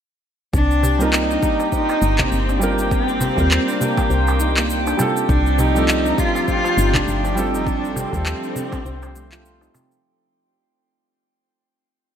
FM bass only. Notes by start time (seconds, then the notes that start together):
0.54 C2
2.02 G1
2.32 G1
3.38 D#2
4.10 C2
5.29 C2
6.77 G1
7.07 G1
8.13 D#2
8.85 C2